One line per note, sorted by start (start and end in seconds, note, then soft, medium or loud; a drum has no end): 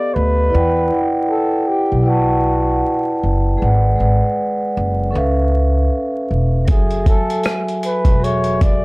0.00 0.14 B3 medium
0.00 0.15 G4 medium
0.00 0.16 A4 medium
0.00 0.15 D5 loud
0.00 0.17 D5 medium
0.00 0.17 F5 medium
0.14 0.50 D2 loud
0.14 1.05 B4 loud
0.50 0.82 E4 medium
0.50 0.83 B4 medium
0.50 0.84 D5 medium
0.54 0.89 E2 loud
0.54 0.84 F#5 medium
0.54 0.85 G5 medium
0.88 1.79 E4 medium
0.88 1.79 B4 medium
0.88 1.80 D5 medium
0.92 1.81 F#5 medium
0.92 1.81 G5 medium
1.30 1.69 A4 medium
1.68 2.09 G4 medium
1.92 2.80 B1 medium
2.03 3.21 E4 medium
2.03 3.22 B4 medium
2.03 3.23 D5 medium
2.07 3.23 F#4 medium
2.07 3.24 F#5 medium
2.07 3.24 A5 medium
3.23 3.58 F#1 medium
3.57 3.90 G#3 medium
3.57 3.90 G#4 medium
3.57 3.91 B4 medium
3.61 3.96 G#1 medium
3.61 3.92 D5 medium
3.61 3.92 F#5 medium
3.96 4.87 G#3 medium
3.96 4.87 G#4 medium
3.96 4.88 B4 medium
4.00 4.20 G#1 medium
4.00 4.89 D5 medium
4.00 4.90 F#5 medium
4.77 5.12 F#1 loud
5.11 6.29 C#4 medium
5.11 6.30 A4 medium
5.11 6.31 B4 medium
5.15 5.88 C#2 loud
5.15 6.32 E5 medium
5.15 6.32 F5 medium
6.31 6.69 E1 medium
6.65 7.04 F#1 loud
6.65 6.98 F#3 medium
6.65 6.98 F#4 medium
6.65 6.99 G#4 medium
6.65 7.07 G#4 medium
6.65 kick loud
6.65 closed hi-hat medium
6.70 7.00 A4 medium
6.70 7.01 E5 medium
6.91 closed hi-hat soft
7.04 7.94 F#3 medium
7.04 7.95 F#4 medium
7.04 7.96 G#5 medium
7.04 kick medium
7.04 closed hi-hat medium
7.08 7.97 A4 medium
7.08 7.56 A4 loud
7.08 7.97 E5 medium
7.30 closed hi-hat soft
7.43 cross-stick loud
7.43 closed hi-hat medium
7.43 tambourine medium
7.68 closed hi-hat soft
7.83 8.25 B4 loud
7.83 closed hi-hat medium
8.05 8.85 E1 medium
8.05 kick medium
8.05 closed hi-hat soft
8.20 8.85 F#3 medium
8.20 8.85 F#4 medium
8.20 8.85 G#4 medium
8.20 8.64 C#5 loud
8.24 8.85 A4 medium
8.24 8.85 E5 medium
8.24 closed hi-hat medium
8.44 closed hi-hat soft
8.61 8.85 D5 medium
8.61 kick loud
8.61 closed hi-hat medium